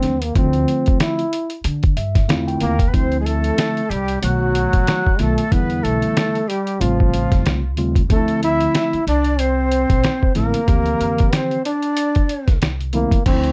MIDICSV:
0, 0, Header, 1, 7, 480
1, 0, Start_track
1, 0, Key_signature, -1, "minor"
1, 0, Tempo, 645161
1, 264, Time_signature, 4, 2, 24, 8
1, 10060, End_track
2, 0, Start_track
2, 0, Title_t, "Flute"
2, 0, Program_c, 0, 73
2, 1949, Note_on_c, 0, 70, 86
2, 2143, Note_on_c, 0, 71, 71
2, 2154, Note_off_c, 0, 70, 0
2, 2185, Note_on_c, 0, 72, 84
2, 2196, Note_off_c, 0, 71, 0
2, 2376, Note_off_c, 0, 72, 0
2, 2381, Note_on_c, 0, 68, 55
2, 2418, Note_on_c, 0, 69, 90
2, 2429, Note_off_c, 0, 68, 0
2, 2899, Note_on_c, 0, 67, 80
2, 2910, Note_off_c, 0, 69, 0
2, 3139, Note_off_c, 0, 67, 0
2, 3143, Note_on_c, 0, 66, 77
2, 3863, Note_on_c, 0, 69, 76
2, 3874, Note_off_c, 0, 66, 0
2, 4104, Note_on_c, 0, 71, 91
2, 4115, Note_off_c, 0, 69, 0
2, 4340, Note_on_c, 0, 69, 84
2, 4351, Note_off_c, 0, 71, 0
2, 4821, Note_on_c, 0, 67, 81
2, 4832, Note_off_c, 0, 69, 0
2, 5063, Note_on_c, 0, 65, 67
2, 5074, Note_off_c, 0, 67, 0
2, 5784, Note_off_c, 0, 65, 0
2, 6037, Note_on_c, 0, 69, 86
2, 6254, Note_off_c, 0, 69, 0
2, 6277, Note_on_c, 0, 76, 90
2, 6721, Note_off_c, 0, 76, 0
2, 6753, Note_on_c, 0, 74, 88
2, 6991, Note_on_c, 0, 72, 81
2, 7002, Note_off_c, 0, 74, 0
2, 7704, Note_off_c, 0, 72, 0
2, 7708, Note_on_c, 0, 70, 82
2, 8429, Note_on_c, 0, 72, 66
2, 8440, Note_off_c, 0, 70, 0
2, 8663, Note_off_c, 0, 72, 0
2, 8668, Note_on_c, 0, 74, 81
2, 9356, Note_off_c, 0, 74, 0
2, 10060, End_track
3, 0, Start_track
3, 0, Title_t, "Trombone"
3, 0, Program_c, 1, 57
3, 0, Note_on_c, 1, 60, 88
3, 171, Note_on_c, 1, 58, 79
3, 182, Note_off_c, 1, 60, 0
3, 268, Note_off_c, 1, 58, 0
3, 276, Note_on_c, 1, 60, 96
3, 721, Note_off_c, 1, 60, 0
3, 753, Note_on_c, 1, 64, 90
3, 1199, Note_off_c, 1, 64, 0
3, 1948, Note_on_c, 1, 58, 106
3, 2146, Note_on_c, 1, 59, 70
3, 2157, Note_off_c, 1, 58, 0
3, 2186, Note_on_c, 1, 60, 91
3, 2197, Note_off_c, 1, 59, 0
3, 2381, Note_off_c, 1, 60, 0
3, 2385, Note_on_c, 1, 56, 68
3, 2430, Note_on_c, 1, 57, 98
3, 2441, Note_off_c, 1, 56, 0
3, 2906, Note_on_c, 1, 55, 97
3, 2917, Note_off_c, 1, 57, 0
3, 3140, Note_off_c, 1, 55, 0
3, 3144, Note_on_c, 1, 54, 103
3, 3864, Note_on_c, 1, 57, 88
3, 3875, Note_off_c, 1, 54, 0
3, 4109, Note_on_c, 1, 59, 93
3, 4121, Note_off_c, 1, 57, 0
3, 4341, Note_on_c, 1, 57, 96
3, 4352, Note_off_c, 1, 59, 0
3, 4824, Note_on_c, 1, 55, 91
3, 4835, Note_off_c, 1, 57, 0
3, 5064, Note_on_c, 1, 53, 94
3, 5075, Note_off_c, 1, 55, 0
3, 5784, Note_off_c, 1, 53, 0
3, 6037, Note_on_c, 1, 57, 94
3, 6254, Note_off_c, 1, 57, 0
3, 6281, Note_on_c, 1, 64, 106
3, 6723, Note_off_c, 1, 64, 0
3, 6758, Note_on_c, 1, 62, 106
3, 6993, Note_on_c, 1, 60, 104
3, 7004, Note_off_c, 1, 62, 0
3, 7704, Note_off_c, 1, 60, 0
3, 7708, Note_on_c, 1, 58, 102
3, 8432, Note_on_c, 1, 60, 93
3, 8444, Note_off_c, 1, 58, 0
3, 8668, Note_off_c, 1, 60, 0
3, 8673, Note_on_c, 1, 62, 98
3, 9359, Note_off_c, 1, 62, 0
3, 9629, Note_on_c, 1, 58, 92
3, 9850, Note_off_c, 1, 58, 0
3, 9869, Note_on_c, 1, 60, 100
3, 10060, Note_off_c, 1, 60, 0
3, 10060, End_track
4, 0, Start_track
4, 0, Title_t, "Tine electric piano"
4, 0, Program_c, 2, 4
4, 0, Note_on_c, 2, 50, 64
4, 0, Note_on_c, 2, 53, 68
4, 0, Note_on_c, 2, 57, 66
4, 0, Note_on_c, 2, 60, 67
4, 0, Note_on_c, 2, 62, 74
4, 115, Note_off_c, 2, 50, 0
4, 116, Note_off_c, 2, 53, 0
4, 116, Note_off_c, 2, 57, 0
4, 117, Note_off_c, 2, 60, 0
4, 118, Note_off_c, 2, 62, 0
4, 260, Note_on_c, 2, 50, 71
4, 262, Note_on_c, 2, 53, 75
4, 265, Note_on_c, 2, 57, 62
4, 266, Note_on_c, 2, 60, 62
4, 268, Note_on_c, 2, 65, 76
4, 915, Note_off_c, 2, 50, 0
4, 916, Note_off_c, 2, 53, 0
4, 918, Note_off_c, 2, 57, 0
4, 918, Note_off_c, 2, 60, 0
4, 919, Note_off_c, 2, 65, 0
4, 1464, Note_on_c, 2, 76, 66
4, 1687, Note_off_c, 2, 76, 0
4, 1699, Note_on_c, 2, 50, 82
4, 1703, Note_on_c, 2, 57, 74
4, 1703, Note_on_c, 2, 65, 73
4, 1703, Note_on_c, 2, 77, 63
4, 1705, Note_on_c, 2, 60, 75
4, 1708, Note_on_c, 2, 64, 85
4, 1832, Note_off_c, 2, 77, 0
4, 1842, Note_on_c, 2, 79, 75
4, 2034, Note_off_c, 2, 50, 0
4, 2036, Note_off_c, 2, 57, 0
4, 2036, Note_off_c, 2, 65, 0
4, 2037, Note_off_c, 2, 60, 0
4, 2039, Note_off_c, 2, 64, 0
4, 2160, Note_off_c, 2, 79, 0
4, 2181, Note_on_c, 2, 50, 77
4, 2182, Note_on_c, 2, 53, 68
4, 2185, Note_on_c, 2, 57, 65
4, 2186, Note_on_c, 2, 60, 66
4, 2189, Note_on_c, 2, 64, 73
4, 2836, Note_off_c, 2, 50, 0
4, 2836, Note_off_c, 2, 53, 0
4, 2837, Note_off_c, 2, 57, 0
4, 2838, Note_off_c, 2, 60, 0
4, 2840, Note_off_c, 2, 64, 0
4, 3140, Note_on_c, 2, 51, 70
4, 3142, Note_on_c, 2, 54, 69
4, 3145, Note_on_c, 2, 57, 66
4, 3146, Note_on_c, 2, 59, 69
4, 3148, Note_on_c, 2, 66, 76
4, 3732, Note_off_c, 2, 51, 0
4, 3734, Note_off_c, 2, 54, 0
4, 3735, Note_off_c, 2, 57, 0
4, 3735, Note_off_c, 2, 59, 0
4, 3737, Note_off_c, 2, 66, 0
4, 3863, Note_on_c, 2, 51, 68
4, 3863, Note_on_c, 2, 54, 58
4, 3866, Note_on_c, 2, 57, 61
4, 3869, Note_on_c, 2, 59, 64
4, 3870, Note_on_c, 2, 65, 71
4, 4036, Note_off_c, 2, 51, 0
4, 4036, Note_off_c, 2, 54, 0
4, 4038, Note_off_c, 2, 57, 0
4, 4039, Note_off_c, 2, 59, 0
4, 4040, Note_off_c, 2, 65, 0
4, 4101, Note_on_c, 2, 50, 75
4, 4102, Note_on_c, 2, 52, 69
4, 4105, Note_on_c, 2, 55, 67
4, 4107, Note_on_c, 2, 59, 71
4, 4109, Note_on_c, 2, 64, 83
4, 4756, Note_off_c, 2, 50, 0
4, 4756, Note_off_c, 2, 52, 0
4, 4757, Note_off_c, 2, 55, 0
4, 4758, Note_off_c, 2, 59, 0
4, 4760, Note_off_c, 2, 64, 0
4, 5060, Note_on_c, 2, 49, 80
4, 5061, Note_on_c, 2, 55, 67
4, 5064, Note_on_c, 2, 57, 72
4, 5065, Note_on_c, 2, 60, 75
4, 5069, Note_on_c, 2, 65, 86
4, 5653, Note_off_c, 2, 49, 0
4, 5653, Note_off_c, 2, 55, 0
4, 5655, Note_off_c, 2, 57, 0
4, 5655, Note_off_c, 2, 60, 0
4, 5657, Note_off_c, 2, 65, 0
4, 5782, Note_on_c, 2, 49, 75
4, 5784, Note_on_c, 2, 55, 67
4, 5787, Note_on_c, 2, 57, 68
4, 5790, Note_on_c, 2, 60, 67
4, 5792, Note_on_c, 2, 65, 91
4, 5956, Note_off_c, 2, 49, 0
4, 5957, Note_off_c, 2, 55, 0
4, 5958, Note_off_c, 2, 57, 0
4, 5959, Note_off_c, 2, 60, 0
4, 5960, Note_off_c, 2, 65, 0
4, 6019, Note_on_c, 2, 50, 70
4, 6022, Note_on_c, 2, 53, 66
4, 6024, Note_on_c, 2, 57, 70
4, 6026, Note_on_c, 2, 60, 64
4, 6027, Note_on_c, 2, 62, 65
4, 6077, Note_on_c, 2, 64, 81
4, 6082, Note_off_c, 2, 62, 0
4, 6674, Note_off_c, 2, 50, 0
4, 6676, Note_off_c, 2, 53, 0
4, 6677, Note_off_c, 2, 57, 0
4, 6678, Note_off_c, 2, 60, 0
4, 6703, Note_off_c, 2, 64, 0
4, 7699, Note_on_c, 2, 50, 65
4, 7700, Note_on_c, 2, 53, 63
4, 7704, Note_on_c, 2, 57, 65
4, 7706, Note_on_c, 2, 60, 62
4, 7707, Note_on_c, 2, 64, 71
4, 7874, Note_off_c, 2, 50, 0
4, 7874, Note_off_c, 2, 53, 0
4, 7876, Note_off_c, 2, 57, 0
4, 7877, Note_off_c, 2, 60, 0
4, 7878, Note_off_c, 2, 64, 0
4, 7944, Note_on_c, 2, 50, 73
4, 7945, Note_on_c, 2, 53, 69
4, 7947, Note_on_c, 2, 52, 69
4, 7949, Note_on_c, 2, 60, 66
4, 7951, Note_on_c, 2, 67, 78
4, 8597, Note_off_c, 2, 50, 0
4, 8597, Note_off_c, 2, 53, 0
4, 8598, Note_off_c, 2, 52, 0
4, 8599, Note_off_c, 2, 60, 0
4, 8600, Note_off_c, 2, 67, 0
4, 9620, Note_on_c, 2, 50, 72
4, 9624, Note_on_c, 2, 53, 76
4, 9625, Note_on_c, 2, 57, 68
4, 9628, Note_on_c, 2, 60, 66
4, 9629, Note_on_c, 2, 64, 86
4, 9795, Note_off_c, 2, 50, 0
4, 9796, Note_off_c, 2, 53, 0
4, 9797, Note_off_c, 2, 57, 0
4, 9798, Note_off_c, 2, 60, 0
4, 9799, Note_off_c, 2, 64, 0
4, 9863, Note_on_c, 2, 50, 74
4, 9865, Note_on_c, 2, 53, 66
4, 9866, Note_on_c, 2, 57, 63
4, 9869, Note_on_c, 2, 60, 66
4, 9871, Note_on_c, 2, 62, 64
4, 9920, Note_on_c, 2, 64, 87
4, 9923, Note_off_c, 2, 62, 0
4, 10060, Note_off_c, 2, 50, 0
4, 10060, Note_off_c, 2, 53, 0
4, 10060, Note_off_c, 2, 57, 0
4, 10060, Note_off_c, 2, 60, 0
4, 10060, Note_off_c, 2, 64, 0
4, 10060, End_track
5, 0, Start_track
5, 0, Title_t, "Upright bass"
5, 0, Program_c, 3, 32
5, 25, Note_on_c, 3, 39, 89
5, 231, Note_off_c, 3, 39, 0
5, 265, Note_on_c, 3, 38, 127
5, 471, Note_off_c, 3, 38, 0
5, 1224, Note_on_c, 3, 50, 102
5, 1431, Note_off_c, 3, 50, 0
5, 1462, Note_on_c, 3, 43, 87
5, 1702, Note_off_c, 3, 43, 0
5, 1702, Note_on_c, 3, 40, 92
5, 1910, Note_off_c, 3, 40, 0
5, 1944, Note_on_c, 3, 39, 91
5, 2150, Note_off_c, 3, 39, 0
5, 2186, Note_on_c, 3, 38, 101
5, 2598, Note_off_c, 3, 38, 0
5, 2903, Note_on_c, 3, 36, 86
5, 3110, Note_off_c, 3, 36, 0
5, 3143, Note_on_c, 3, 35, 78
5, 3469, Note_off_c, 3, 35, 0
5, 3522, Note_on_c, 3, 33, 73
5, 3610, Note_off_c, 3, 33, 0
5, 3863, Note_on_c, 3, 35, 86
5, 3982, Note_off_c, 3, 35, 0
5, 4106, Note_on_c, 3, 40, 109
5, 4312, Note_off_c, 3, 40, 0
5, 4345, Note_on_c, 3, 35, 80
5, 4464, Note_off_c, 3, 35, 0
5, 5065, Note_on_c, 3, 33, 97
5, 5390, Note_off_c, 3, 33, 0
5, 5445, Note_on_c, 3, 29, 76
5, 5532, Note_off_c, 3, 29, 0
5, 5545, Note_on_c, 3, 36, 73
5, 5784, Note_off_c, 3, 36, 0
5, 5784, Note_on_c, 3, 39, 90
5, 5990, Note_off_c, 3, 39, 0
5, 6026, Note_on_c, 3, 38, 105
5, 6438, Note_off_c, 3, 38, 0
5, 6747, Note_on_c, 3, 36, 89
5, 7334, Note_off_c, 3, 36, 0
5, 7364, Note_on_c, 3, 34, 80
5, 7451, Note_off_c, 3, 34, 0
5, 7707, Note_on_c, 3, 33, 82
5, 7825, Note_off_c, 3, 33, 0
5, 7945, Note_on_c, 3, 38, 113
5, 8151, Note_off_c, 3, 38, 0
5, 8185, Note_on_c, 3, 41, 82
5, 8304, Note_off_c, 3, 41, 0
5, 9283, Note_on_c, 3, 36, 85
5, 9696, Note_off_c, 3, 36, 0
5, 9866, Note_on_c, 3, 38, 109
5, 10060, Note_off_c, 3, 38, 0
5, 10060, End_track
6, 0, Start_track
6, 0, Title_t, "Muted upright bass strokes"
6, 6645, Note_on_c, 9, 29, 41
6, 6719, Note_off_c, 9, 29, 0
6, 10060, End_track
7, 0, Start_track
7, 0, Title_t, "Drums"
7, 19, Note_on_c, 9, 42, 58
7, 25, Note_on_c, 9, 38, 33
7, 94, Note_off_c, 9, 42, 0
7, 99, Note_off_c, 9, 38, 0
7, 161, Note_on_c, 9, 42, 63
7, 236, Note_off_c, 9, 42, 0
7, 264, Note_on_c, 9, 36, 107
7, 264, Note_on_c, 9, 42, 62
7, 338, Note_off_c, 9, 42, 0
7, 339, Note_off_c, 9, 36, 0
7, 396, Note_on_c, 9, 42, 36
7, 470, Note_off_c, 9, 42, 0
7, 507, Note_on_c, 9, 42, 56
7, 581, Note_off_c, 9, 42, 0
7, 641, Note_on_c, 9, 42, 47
7, 653, Note_on_c, 9, 36, 80
7, 715, Note_off_c, 9, 42, 0
7, 727, Note_off_c, 9, 36, 0
7, 744, Note_on_c, 9, 42, 83
7, 747, Note_on_c, 9, 38, 103
7, 819, Note_off_c, 9, 42, 0
7, 821, Note_off_c, 9, 38, 0
7, 884, Note_on_c, 9, 42, 34
7, 959, Note_off_c, 9, 42, 0
7, 988, Note_on_c, 9, 42, 73
7, 1063, Note_off_c, 9, 42, 0
7, 1115, Note_on_c, 9, 42, 50
7, 1189, Note_off_c, 9, 42, 0
7, 1222, Note_on_c, 9, 42, 83
7, 1297, Note_off_c, 9, 42, 0
7, 1360, Note_on_c, 9, 42, 38
7, 1366, Note_on_c, 9, 36, 112
7, 1434, Note_off_c, 9, 42, 0
7, 1441, Note_off_c, 9, 36, 0
7, 1465, Note_on_c, 9, 42, 75
7, 1539, Note_off_c, 9, 42, 0
7, 1602, Note_on_c, 9, 36, 90
7, 1603, Note_on_c, 9, 42, 61
7, 1606, Note_on_c, 9, 38, 39
7, 1676, Note_off_c, 9, 36, 0
7, 1677, Note_off_c, 9, 42, 0
7, 1681, Note_off_c, 9, 38, 0
7, 1705, Note_on_c, 9, 42, 72
7, 1711, Note_on_c, 9, 38, 107
7, 1779, Note_off_c, 9, 42, 0
7, 1786, Note_off_c, 9, 38, 0
7, 1847, Note_on_c, 9, 42, 33
7, 1921, Note_off_c, 9, 42, 0
7, 1938, Note_on_c, 9, 42, 66
7, 2013, Note_off_c, 9, 42, 0
7, 2077, Note_on_c, 9, 36, 98
7, 2080, Note_on_c, 9, 42, 61
7, 2152, Note_off_c, 9, 36, 0
7, 2155, Note_off_c, 9, 42, 0
7, 2185, Note_on_c, 9, 36, 103
7, 2186, Note_on_c, 9, 42, 67
7, 2259, Note_off_c, 9, 36, 0
7, 2260, Note_off_c, 9, 42, 0
7, 2319, Note_on_c, 9, 42, 29
7, 2393, Note_off_c, 9, 42, 0
7, 2428, Note_on_c, 9, 42, 62
7, 2503, Note_off_c, 9, 42, 0
7, 2560, Note_on_c, 9, 42, 48
7, 2634, Note_off_c, 9, 42, 0
7, 2664, Note_on_c, 9, 42, 84
7, 2667, Note_on_c, 9, 38, 104
7, 2739, Note_off_c, 9, 42, 0
7, 2741, Note_off_c, 9, 38, 0
7, 2806, Note_on_c, 9, 42, 31
7, 2880, Note_off_c, 9, 42, 0
7, 2911, Note_on_c, 9, 42, 64
7, 2986, Note_off_c, 9, 42, 0
7, 3037, Note_on_c, 9, 42, 50
7, 3112, Note_off_c, 9, 42, 0
7, 3144, Note_on_c, 9, 42, 85
7, 3218, Note_off_c, 9, 42, 0
7, 3385, Note_on_c, 9, 42, 72
7, 3460, Note_off_c, 9, 42, 0
7, 3520, Note_on_c, 9, 42, 53
7, 3522, Note_on_c, 9, 36, 93
7, 3595, Note_off_c, 9, 42, 0
7, 3597, Note_off_c, 9, 36, 0
7, 3626, Note_on_c, 9, 42, 73
7, 3633, Note_on_c, 9, 38, 97
7, 3700, Note_off_c, 9, 42, 0
7, 3707, Note_off_c, 9, 38, 0
7, 3769, Note_on_c, 9, 36, 78
7, 3843, Note_off_c, 9, 36, 0
7, 3861, Note_on_c, 9, 42, 65
7, 3867, Note_on_c, 9, 38, 31
7, 3935, Note_off_c, 9, 42, 0
7, 3941, Note_off_c, 9, 38, 0
7, 4002, Note_on_c, 9, 42, 59
7, 4076, Note_off_c, 9, 42, 0
7, 4106, Note_on_c, 9, 36, 100
7, 4106, Note_on_c, 9, 42, 68
7, 4180, Note_off_c, 9, 42, 0
7, 4181, Note_off_c, 9, 36, 0
7, 4239, Note_on_c, 9, 42, 34
7, 4314, Note_off_c, 9, 42, 0
7, 4351, Note_on_c, 9, 42, 59
7, 4425, Note_off_c, 9, 42, 0
7, 4481, Note_on_c, 9, 42, 44
7, 4556, Note_off_c, 9, 42, 0
7, 4589, Note_on_c, 9, 42, 84
7, 4591, Note_on_c, 9, 38, 104
7, 4663, Note_off_c, 9, 42, 0
7, 4666, Note_off_c, 9, 38, 0
7, 4727, Note_on_c, 9, 42, 33
7, 4801, Note_off_c, 9, 42, 0
7, 4834, Note_on_c, 9, 42, 70
7, 4908, Note_off_c, 9, 42, 0
7, 4962, Note_on_c, 9, 42, 47
7, 5037, Note_off_c, 9, 42, 0
7, 5069, Note_on_c, 9, 42, 85
7, 5143, Note_off_c, 9, 42, 0
7, 5209, Note_on_c, 9, 36, 91
7, 5284, Note_off_c, 9, 36, 0
7, 5309, Note_on_c, 9, 42, 70
7, 5383, Note_off_c, 9, 42, 0
7, 5444, Note_on_c, 9, 36, 97
7, 5444, Note_on_c, 9, 42, 50
7, 5448, Note_on_c, 9, 38, 37
7, 5518, Note_off_c, 9, 36, 0
7, 5518, Note_off_c, 9, 42, 0
7, 5522, Note_off_c, 9, 38, 0
7, 5547, Note_on_c, 9, 42, 66
7, 5554, Note_on_c, 9, 38, 99
7, 5622, Note_off_c, 9, 42, 0
7, 5628, Note_off_c, 9, 38, 0
7, 5782, Note_on_c, 9, 42, 57
7, 5857, Note_off_c, 9, 42, 0
7, 5919, Note_on_c, 9, 36, 85
7, 5922, Note_on_c, 9, 42, 59
7, 5993, Note_off_c, 9, 36, 0
7, 5996, Note_off_c, 9, 42, 0
7, 6026, Note_on_c, 9, 36, 94
7, 6027, Note_on_c, 9, 42, 65
7, 6101, Note_off_c, 9, 36, 0
7, 6101, Note_off_c, 9, 42, 0
7, 6161, Note_on_c, 9, 42, 35
7, 6235, Note_off_c, 9, 42, 0
7, 6270, Note_on_c, 9, 42, 66
7, 6344, Note_off_c, 9, 42, 0
7, 6402, Note_on_c, 9, 42, 46
7, 6477, Note_off_c, 9, 42, 0
7, 6507, Note_on_c, 9, 42, 83
7, 6510, Note_on_c, 9, 38, 110
7, 6581, Note_off_c, 9, 42, 0
7, 6584, Note_off_c, 9, 38, 0
7, 6646, Note_on_c, 9, 42, 32
7, 6721, Note_off_c, 9, 42, 0
7, 6752, Note_on_c, 9, 42, 68
7, 6827, Note_off_c, 9, 42, 0
7, 6878, Note_on_c, 9, 42, 44
7, 6952, Note_off_c, 9, 42, 0
7, 6985, Note_on_c, 9, 42, 84
7, 7059, Note_off_c, 9, 42, 0
7, 7228, Note_on_c, 9, 42, 70
7, 7303, Note_off_c, 9, 42, 0
7, 7363, Note_on_c, 9, 36, 95
7, 7364, Note_on_c, 9, 42, 55
7, 7438, Note_off_c, 9, 36, 0
7, 7439, Note_off_c, 9, 42, 0
7, 7467, Note_on_c, 9, 42, 70
7, 7473, Note_on_c, 9, 38, 103
7, 7541, Note_off_c, 9, 42, 0
7, 7548, Note_off_c, 9, 38, 0
7, 7609, Note_on_c, 9, 36, 79
7, 7683, Note_off_c, 9, 36, 0
7, 7701, Note_on_c, 9, 42, 61
7, 7706, Note_on_c, 9, 38, 34
7, 7775, Note_off_c, 9, 42, 0
7, 7781, Note_off_c, 9, 38, 0
7, 7841, Note_on_c, 9, 42, 62
7, 7915, Note_off_c, 9, 42, 0
7, 7945, Note_on_c, 9, 36, 103
7, 7945, Note_on_c, 9, 42, 68
7, 8019, Note_off_c, 9, 36, 0
7, 8019, Note_off_c, 9, 42, 0
7, 8077, Note_on_c, 9, 42, 34
7, 8152, Note_off_c, 9, 42, 0
7, 8189, Note_on_c, 9, 42, 63
7, 8263, Note_off_c, 9, 42, 0
7, 8321, Note_on_c, 9, 42, 48
7, 8334, Note_on_c, 9, 36, 90
7, 8395, Note_off_c, 9, 42, 0
7, 8408, Note_off_c, 9, 36, 0
7, 8427, Note_on_c, 9, 42, 93
7, 8430, Note_on_c, 9, 38, 101
7, 8501, Note_off_c, 9, 42, 0
7, 8504, Note_off_c, 9, 38, 0
7, 8566, Note_on_c, 9, 42, 32
7, 8640, Note_off_c, 9, 42, 0
7, 8670, Note_on_c, 9, 42, 73
7, 8745, Note_off_c, 9, 42, 0
7, 8798, Note_on_c, 9, 42, 48
7, 8872, Note_off_c, 9, 42, 0
7, 8903, Note_on_c, 9, 42, 86
7, 8977, Note_off_c, 9, 42, 0
7, 9039, Note_on_c, 9, 42, 38
7, 9047, Note_on_c, 9, 36, 90
7, 9114, Note_off_c, 9, 42, 0
7, 9121, Note_off_c, 9, 36, 0
7, 9146, Note_on_c, 9, 42, 68
7, 9220, Note_off_c, 9, 42, 0
7, 9282, Note_on_c, 9, 36, 87
7, 9282, Note_on_c, 9, 42, 53
7, 9286, Note_on_c, 9, 38, 37
7, 9357, Note_off_c, 9, 36, 0
7, 9357, Note_off_c, 9, 42, 0
7, 9361, Note_off_c, 9, 38, 0
7, 9387, Note_on_c, 9, 42, 72
7, 9394, Note_on_c, 9, 38, 100
7, 9461, Note_off_c, 9, 42, 0
7, 9468, Note_off_c, 9, 38, 0
7, 9527, Note_on_c, 9, 42, 29
7, 9602, Note_off_c, 9, 42, 0
7, 9619, Note_on_c, 9, 42, 60
7, 9693, Note_off_c, 9, 42, 0
7, 9757, Note_on_c, 9, 36, 88
7, 9761, Note_on_c, 9, 42, 59
7, 9832, Note_off_c, 9, 36, 0
7, 9836, Note_off_c, 9, 42, 0
7, 9864, Note_on_c, 9, 42, 67
7, 9864, Note_on_c, 9, 49, 83
7, 9865, Note_on_c, 9, 36, 97
7, 9939, Note_off_c, 9, 36, 0
7, 9939, Note_off_c, 9, 42, 0
7, 9939, Note_off_c, 9, 49, 0
7, 9996, Note_on_c, 9, 42, 33
7, 10060, Note_off_c, 9, 42, 0
7, 10060, End_track
0, 0, End_of_file